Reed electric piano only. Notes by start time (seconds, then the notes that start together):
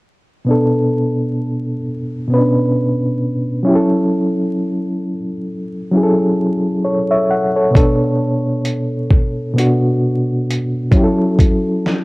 0.45 B2 B3 D4
0.51 A4
2.28 B2 B3
2.32 C#4 B4
2.38 D4
3.63 F#3 C#4 E4
3.69 G4
3.75 A4
5.91 F#3 C#4 E4
5.97 G#4
6.03 A4
6.84 A4 C#5
7.11 C#5 E5
7.31 F#5
7.56 A4 C#5
7.71 B2 B3 D4
7.76 A4
9.54 B2 B3
9.58 D4 F#4
10.91 F#3 C#4
10.95 E4 G4
11.04 A4